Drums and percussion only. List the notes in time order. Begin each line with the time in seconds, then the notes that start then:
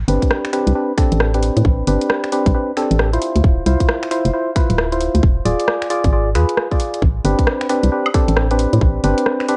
0.08 open hi-hat
0.22 kick, closed hi-hat
0.31 cross-stick
0.45 finger snap, closed hi-hat
0.53 finger snap, open hi-hat
0.67 closed hi-hat
0.98 finger snap, kick, open hi-hat
1.12 closed hi-hat
1.20 cross-stick
1.34 closed hi-hat
1.43 open hi-hat
1.57 closed hi-hat
1.65 kick
1.87 open hi-hat
2.01 closed hi-hat
2.10 cross-stick
2.24 finger snap, closed hi-hat
2.32 open hi-hat
2.46 kick, closed hi-hat
2.77 finger snap, open hi-hat
2.91 closed hi-hat
2.99 cross-stick
3.13 closed hi-hat
3.22 open hi-hat
3.36 closed hi-hat
3.44 kick
3.66 open hi-hat
3.80 kick, closed hi-hat
3.89 cross-stick
4.03 finger snap, closed hi-hat
4.11 finger snap, open hi-hat
4.25 closed hi-hat
4.56 finger snap, kick, open hi-hat
4.70 closed hi-hat
4.78 cross-stick
4.92 closed hi-hat
5.01 open hi-hat
5.15 closed hi-hat
5.23 kick
5.46 open hi-hat
5.60 closed hi-hat
5.68 cross-stick
5.82 finger snap, closed hi-hat
5.90 open hi-hat
6.04 kick, closed hi-hat
6.35 finger snap, open hi-hat
6.49 closed hi-hat
6.57 cross-stick
6.71 kick, closed hi-hat
6.80 open hi-hat
6.94 closed hi-hat
7.02 kick
7.25 open hi-hat
7.39 kick, closed hi-hat
7.47 cross-stick
7.61 finger snap, closed hi-hat
7.69 finger snap, open hi-hat
7.83 closed hi-hat
8.06 high woodblock
8.14 finger snap, kick, open hi-hat
8.28 closed hi-hat
8.36 cross-stick
8.51 closed hi-hat
8.59 open hi-hat
8.73 closed hi-hat
8.81 kick
9.04 open hi-hat
9.18 closed hi-hat
9.26 cross-stick
9.40 finger snap, closed hi-hat
9.48 open hi-hat